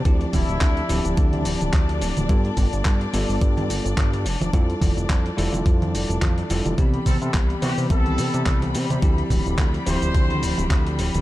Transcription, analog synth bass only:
X:1
M:4/4
L:1/16
Q:"Swing 16ths" 1/4=107
K:Ddor
V:1 name="Analog synth bass" clef=bass
D,, z D,,, D,,, D,, z D,,, D,,, D,,2 D,,, D,,, D,,2 D,,, D,,, | G,, z G,,, G,,, G,, z G,,, G,,, G,,2 G,,, G,,, G,,2 F,,, F,,, | F,, z F,,, F,,, F,, z F,,, F,,, F,,2 F,,, F,,, F,, z F,,, F,,, | C,, z C, C, C,, z C, C, C,,2 C, C, C,,2 C, C, |
D,, z D,,, D,,, D,, z D,,, D,,, D,,2 D,,, D,,, D,,2 D,,, D,,, |]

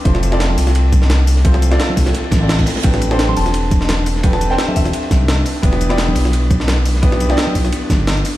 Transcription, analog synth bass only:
X:1
M:4/4
L:1/8
Q:"Swing 16ths" 1/4=172
K:Ephr
V:1 name="Analog synth bass" clef=bass
F,,,3 C,,4- C,,- | C,,2 z C,, z A,,,2 z | A,,,3 E,,,4- E,,,- | E,,,2 z E,,, z C,,2 z |
E,,,3 B,,,4- B,,,- | B,,,2 z B,,, z G,,,2 z |]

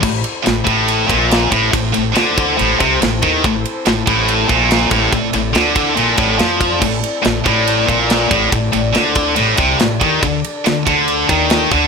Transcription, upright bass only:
X:1
M:4/4
L:1/8
Q:1/4=141
K:Am
V:1 name="Upright bass" clef=bass
A,,, z A,,, A,,,2 _B,,,2 A,,, | A,,, A,,, D,,2 A,,, C,, A,,, ^D,, | A,,, z A,,, A,,,2 _B,,,2 A,,, | A,,, A,,, D,,2 _B,,, A,,, z2 |
A,,, z A,,, A,,,2 _B,,,2 A,,, | A,,, A,,, D,,2 A,,, C,, A,,, ^D,, | D,, z D,, D,,2 ^D,,2 =D,, |]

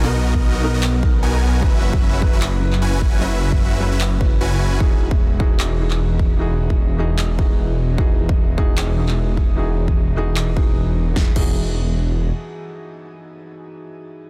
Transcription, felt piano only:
X:1
M:4/4
L:1/8
Q:"Swing 16ths" 1/4=151
K:Elyd
V:1 name="Felt piano"
[B,,B,DA]3 [B,,B,DA]2 [B,,B,DA]3 | [F,CEB]3 [F,CEB]2 [F,CEB]3 | [F,CEB]3 [F,CEB]2 [F,CEB]3 | [E,DFG]3 [E,DFG]2 [E,DFG]3 |
[E,DFG]3 [E,DFG]2 [E,DFG]3 | [E,DFG]3 [E,DFG]2 [E,DFG]3 | [E,DFG]3 [E,DFG]2 [E,DFG]3 | [E,DFG] [E,DFG]6- [E,DFG]- |
[E,DFG]8 |]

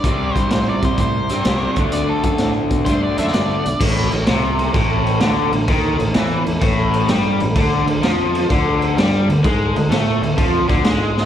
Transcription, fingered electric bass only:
X:1
M:4/4
L:1/8
Q:"Swing" 1/4=128
K:D
V:1 name="Fingered electric bass" clef=bass
=C,, G,, A,, =C, A,, G,, C,, D,, | D,, F,, A,, B,, G,, F,, G,, B,,, | A,,, A,,, =C,,2 A,,,2 D,, A,,, | ^D,, A,,, E,, A,,, A,,,2 G,, A,,, |
D,, D,, =F,,2 D,,2 G,, D,, | ^G,, D,, A,, D,, =F,, D,, G,,2 |]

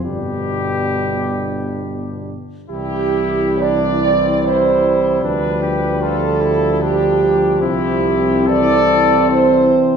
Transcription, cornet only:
X:1
M:3/4
L:1/8
Q:1/4=74
K:C
V:1 name="Cornet"
G4- G z | E2 D C E2 | D G F E D2 | E2 A3 z |]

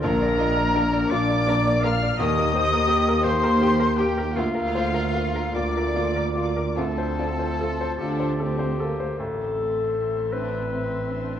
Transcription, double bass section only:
X:1
M:6/8
L:1/8
Q:3/8=53
K:Bb
V:1 name="Double bass section" clef=bass
B,,,3 B,,,3 | E,,3 E,,3 | D,,3 D,,3 | D,,3 D,,3 |
[K:Am] A,,,6 |]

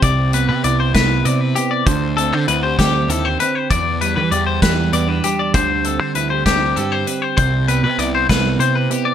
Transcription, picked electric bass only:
X:1
M:6/8
L:1/16
Q:3/8=65
K:C
V:1 name="Picked electric bass" clef=bass
C,,3 C, C,,2 C,,2 C,2 z2 | D,,3 D, D,,2 D,,2 _E,,2 z2 | E,,3 E, E,,2 E,,2 E,,2 z2 | D,,3 D, D,,2 D,,2 G,,2 z2 |
C,,3 C, C,,2 C,,2 C,2 z2 |]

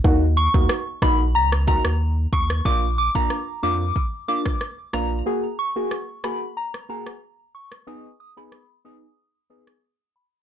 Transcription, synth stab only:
X:1
M:4/4
L:1/16
Q:1/4=92
K:Ebm
V:1 name="Synth stab"
[B,EG] z2 [B,EG] z2 [B,EG] z3 [B,EG] z4 z | [B,=DF] z2 [B,DF] z2 [B,DF] z3 [B,DF] z3 [B,DF]2 | [B,GA] z2 [B,GA] z2 [B,GA] z3 [B,GA] z4 z | [CEA] z2 [CEA] z2 [CEA] z3 [CEA] z4 z |]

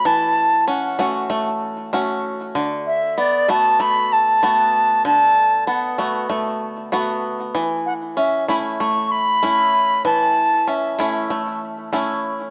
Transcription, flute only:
X:1
M:4/4
L:1/8
Q:"Swing 16ths" 1/4=96
K:A
V:1 name="Flute"
a2 f2 z4 | z e d a b a3 | a2 f2 z4 | z f e b c' b3 |
a2 e2 z4 |]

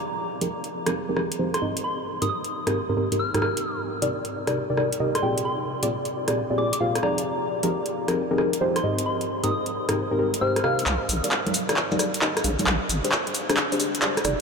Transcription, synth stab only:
X:1
M:4/4
L:1/16
Q:"Swing 16ths" 1/4=133
K:Cm
V:1 name="Synth stab"
[F,CEGAd]3 [F,CEGAB] z3 [F,CEGAB] z [F,CEGAB] [F,CEGAB] z [F,CEGAc] z [A,,CEGe]2- | [A,,CEGe]3 [A,,CEGB] z3 [A,,CEGB] z [A,,CEGB] [A,,CEGB] [A,,CEGB]2 [A,,CEGB] [A,,CEGB] z | z3 [C,EGBd] z3 [C,EGBd] z [C,EGBd] [C,EGBd] z [C,EGBe] z [B,,CFGAg]2- | [B,,CFGAg]3 [B,,CFGAd] z3 [B,,CFGAd] z [B,,CFGAd] [B,,CFGAd] z [B,,CFGAf] z [F,CEGAd]2- |
[F,CEGAd]3 [F,CEGAB] z3 [F,CEGAB] z [F,CEGAB] [F,CEGAB] z [F,CEGAc] z [A,,CEGe]2- | [A,,CEGe]3 [A,,CEGB] z3 [A,,CEGB] z [A,,CEGB] [A,,CEGB] z [A,,CEGc] z [C,EGBf]2- | [C,EGBf]2 z [EGBd] z3 [EGBd] z [EGBd] [EGBd] z [EGBe] z [DGAf]2- | [DGAf]3 [DGAc] z3 [DGAc] z [DGAc] [DGAc] z [DGAd] z [EGAd]2 |]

